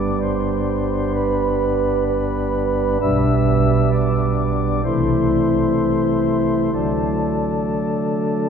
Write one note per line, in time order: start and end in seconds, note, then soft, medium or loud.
0.00 2.97 G1 medium
0.00 2.97 G2 medium
0.00 2.97 G3 soft
0.00 2.97 B3 soft
0.00 2.97 D4 medium
0.00 0.19 D5 loud
0.22 1.12 C5 loud
1.15 2.04 B4 loud
2.07 2.98 B4 loud
3.01 4.81 B1 medium
3.01 4.81 B2 medium
3.01 4.81 G3 medium
3.01 4.81 B3 medium
3.01 4.81 D4 medium
3.01 3.91 E5 loud
3.92 4.82 D5 medium
4.84 6.70 C2 medium
4.84 6.70 C3 medium
4.84 6.70 E3 medium
4.84 6.70 A3 medium
4.84 6.70 E4 soft
4.84 6.70 C5 loud
6.73 8.49 D3 medium
6.73 8.49 F#3 soft
6.73 8.49 A3 soft
6.73 8.49 D4 soft
6.73 8.49 A4 medium